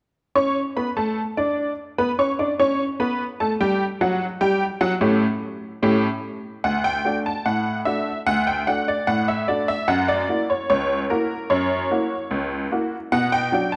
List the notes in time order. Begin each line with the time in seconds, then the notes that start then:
0.35 C#4 C#5 C#6
0.77 B3 B4 B5
0.97 A3 A4 A5
1.37 D4 D5 D6
1.98 B3 B4 B5
2.19 C#4 C#5 C#6
2.39 D4 D5 D6
2.60 C#4 C#5 C#6
3.00 B3 B4 B5
3.40 A3 A4 A5
3.61 G3 G4 G5
4.01 F#3 F#4 F#5
4.41 G3 G4 G5
4.81 F#3 F#4 F#5
5.01 A2 A3 C#4 G4
5.82 A2 A3 C#4 G4
6.64 D2 F#5
6.84 G5
7.05 A3 D4 F#4
7.26 A5
7.46 A2 F#5
7.85 A3 D4 F#4 E5
8.27 D2 F#5
8.47 G5
8.67 A3 D4 F#4 F#5
8.88 D5
9.07 A2 F#5
9.28 E5
9.48 A3 D4 F#4 D5
9.68 E5
9.88 F#2 F#5
10.08 D5
10.29 A#3 E4 F#4
10.50 C#5
10.70 C#2 C#5
11.10 A#3 E4 F#4 A#4
11.50 F#2 C#5
11.91 A#3 E4 F#4
12.31 C#2
12.71 A#3 E4 F#4
13.12 B2 F#5
13.32 G5
13.52 F#3 D4 F#4
13.72 A5